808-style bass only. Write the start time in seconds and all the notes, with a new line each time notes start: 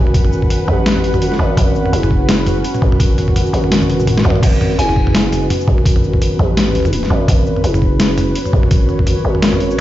Already playing: G#1
0.68 A1
1.18 G#1
1.39 G#1
1.57 G#1
1.93 F#1
2.82 G#1
3.53 G#1
4.25 G#1
4.43 G#1
4.79 F#1
5.68 G#1
6.39 A1
7.10 G#1
7.28 G#1
7.64 F#1
8.53 G#1
9.25 G#1